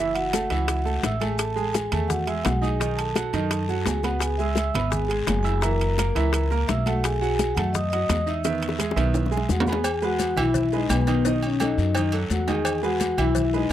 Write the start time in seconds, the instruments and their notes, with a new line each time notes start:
Already playing: upright bass F#1, upright piano E3 E5, vibraphone E5 E6
0.00 upright piano E4
0.14 vibraphone F#4 F#5, high conga, high timbale, maracas
0.33 upright piano A3 A4 A5, high bongo, high conga, high timbale, short guiro, maracas
0.50 upright bass C#2, upright piano E3 E4 E5, high bongo, high conga, high timbale, short guiro, maracas
0.68 high bongo, high conga, high timbale, long guiro, maracas
0.85 upright piano A3 A4 A5, high bongo, high conga, maracas
1.03 upright bass A1, vibraphone E5 E6, high bongo, low bongo, high conga, high timbale, short guiro, maracas
1.20 upright piano A3 A4 A5, vibraphone G#4 G#5, high bongo, high conga, high timbale, short guiro, maracas
1.38 vibraphone A4 A5, high bongo, high conga, high timbale, long guiro, maracas
1.54 upright piano G#3 G#4 G#5, vibraphone A4 A5, high conga, maracas
1.73 vibraphone G#4 G#5, high bongo, high conga, high timbale, short guiro, maracas
1.92 upright bass E2, upright piano A3 A4 A5, high conga, low conga, high timbale, short guiro, maracas
2.08 vibraphone F#4 F#5, high bongo, high conga, low conga, long guiro, maracas
2.27 upright piano G#3 G#4 G#5, vibraphone E5 E6, high conga, high timbale, maracas
2.43 upright bass B1, vibraphone F#4 F#5, high bongo, low bongo, high conga, high timbale, low timbale, short guiro, maracas
2.62 upright piano D#4 D#5 D#6, vibraphone G#4 G#5, high conga, short guiro, maracas
2.80 upright piano D#3 D#4 D#5, high bongo, high timbale, long guiro, maracas
2.97 vibraphone A4 A5, high conga, high timbale, maracas
3.16 upright piano F#3 F#4 F#5, high bongo, high conga, high timbale, short guiro, maracas
3.33 upright bass F#2, upright piano D#3 D#4 D#5, high bongo, high conga, high timbale, short guiro, maracas
3.51 high bongo, high conga, high timbale, long guiro, maracas
3.69 upright piano F#3 F#4 F#5, high bongo, high conga, maracas
3.85 upright bass C#2, vibraphone G#4 G#5, high bongo, low bongo, high conga, high timbale, low timbale, short guiro, maracas
4.03 upright piano B3 B4 B5, vibraphone F#4 F#5, high bongo, high conga, high timbale, short guiro, maracas
4.19 vibraphone G#4 G#5, high bongo, high conga, high timbale, long guiro, maracas
4.38 upright piano G#3 G#4 G#5, vibraphone E5 E6, high conga, maracas
4.55 vibraphone E5 E6, high bongo, high conga, high timbale, short guiro, maracas
4.74 upright bass G#1, upright piano B3 B4 B5, high conga, low conga, high timbale, short guiro, maracas
4.91 vibraphone G#4 G#5, high bongo, high conga, low conga, long guiro, maracas
5.08 upright piano G#3 G#4 G#5, high conga, high timbale, maracas
5.27 upright bass F#1, high bongo, low bongo, high conga, high timbale, low timbale, short guiro, maracas
5.43 upright piano E4 E5 E6, vibraphone G#4 G#5, short guiro, maracas
5.61 upright piano E3 E4 E5, vibraphone A#4 A#5, high bongo, high conga, high timbale, long guiro, maracas
5.81 high conga, high timbale, maracas
5.98 upright piano A#3 A#4 A#5, high bongo, high conga, high timbale, short guiro, maracas
6.15 upright bass C#2, upright piano E3 E4 E5, high bongo, high conga, high timbale, short guiro, maracas
6.33 high bongo, high conga, high timbale, long guiro, maracas
6.51 upright piano A#3 A#4 A#5, high bongo, high conga, maracas
6.68 upright bass B1, vibraphone E5 E6, high bongo, low bongo, high conga, high timbale, short guiro, maracas
6.86 upright piano A3 A4 A5, vibraphone F#4 F#5, high bongo, high conga, high timbale, short guiro, maracas
7.04 vibraphone G#4 G#5, high bongo, high timbale, long guiro, maracas
7.21 upright piano F#3 F#4 F#5, vibraphone G#4 G#5, high conga, maracas
7.39 high bongo, high conga, high timbale, short guiro, maracas
7.55 upright bass F#2, upright piano A3 A4 A5, vibraphone F#4 F#5, high conga, low conga, high timbale, short guiro, maracas
7.73 vibraphone D#5 D#6, high bongo, high conga, low conga, long guiro, maracas
7.90 upright piano F#3 F#4 F#5, vibraphone D#5 D#6, high conga, high timbale, maracas
8.09 upright bass E2, high bongo, low bongo, high conga, high timbale, low timbale, short guiro, maracas
8.26 upright piano D#4 D#5 D#6, vibraphone E5 E6, short guiro, maracas
8.44 upright piano D#3 B3 E5, high bongo, high conga, high timbale, long guiro, maracas
8.62 high conga, high timbale, maracas
8.69 high bongo
8.78 upright piano G#3 G#4 G#5, high conga, high timbale, short guiro, maracas
8.91 high bongo
8.96 upright bass B1, upright piano D#3 B3 E5, high conga, high timbale, short guiro, maracas
9.14 low bongo, high conga, high timbale, long guiro, maracas
9.26 low bongo
9.31 upright piano G#3 G#4 G#5, high conga, maracas
9.37 low bongo
9.49 upright bass E2, vibraphone F#4 F#5, low bongo, high conga, short guiro, maracas
9.60 low bongo, low timbale
9.67 upright piano B3 B4 B5, vibraphone G#4 G#5, high conga, short guiro, maracas
9.73 low bongo, low timbale
9.84 cowbell, high conga, low agogo, long guiro, maracas
10.02 upright piano G#3 G#4 B4, vibraphone F#4 F#5, high conga, maracas
10.19 cowbell, high conga, low agogo, short guiro, maracas
10.36 upright bass B1, upright piano E3 E4 E5, vibraphone E4 E5, high conga, low conga, low agogo, short guiro, maracas
10.54 cowbell, high conga, low conga, long guiro, maracas
10.72 upright piano G#3 G#4 B4, vibraphone D#4 D#5, high conga, maracas
10.89 upright bass B1, vibraphone B3 B4, cowbell, high conga, low timbale, low agogo, short guiro, maracas
11.07 upright piano D#3 D#4 D#5, vibraphone B3 B4, cowbell, low agogo, short guiro, maracas
11.25 upright piano D#3 D#4 D#5, vibraphone D#4 D#5, cowbell, long guiro, maracas
11.43 vibraphone C#5, high conga, low agogo, maracas
11.47 vibraphone C#4
11.60 upright piano F#3 F#4 A4, vibraphone D#4 D#5, cowbell, high conga, low agogo, short guiro, maracas
11.78 upright bass F#2, high conga, short guiro, maracas
11.95 upright piano D#3 D#4 D#5, cowbell, high conga, low agogo, long guiro, maracas
12.12 upright piano F#3 F#4 A4, high conga, low agogo, maracas
12.30 upright bass E2, vibraphone F#4 F#5, cowbell, high conga, short guiro, maracas
12.47 upright piano D#3 D#4 D#5, vibraphone G#4 G#5, cowbell, high conga, low agogo, short guiro, maracas
12.65 cowbell, high conga, low agogo, long guiro, maracas
12.83 upright piano G#3 G#4 B4, vibraphone F#4 F#5, high conga, maracas
13.00 cowbell, high conga, low agogo, short guiro, maracas
13.17 upright bass B1, upright piano E3 E4 E5, vibraphone E4 E5, high conga, low conga, low agogo, short guiro, maracas
13.35 cowbell, high conga, low conga, long guiro, maracas
13.54 upright piano G#3 G#4 B4, vibraphone D#4 D#5, high conga, maracas